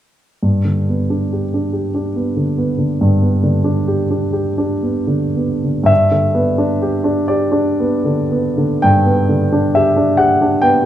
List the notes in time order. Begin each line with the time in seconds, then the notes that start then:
0.43 G2
0.65 D3
0.89 B3
1.10 D4
1.32 G4
1.54 D4
1.73 G4
1.95 D4
2.16 B3
2.37 D3
2.58 B3
2.78 D3
3.01 G2
3.22 B3
3.44 D3
3.64 D4
3.88 G4
4.11 D4
4.33 G4
4.58 D4
4.82 B3
5.07 D3
5.36 B3
5.64 D3
5.83 G2 E5
6.11 D3
6.35 B3
6.58 D4
6.82 G4
7.04 D4
7.28 G4 D5
7.52 D4
7.80 B3
8.05 D3
8.32 B3
8.58 D3
8.82 G2 G5
9.06 B3
9.29 D3
9.52 D4
9.75 G4 E5
9.96 D4
10.17 G4 F#5
10.42 D4
10.62 B3 G5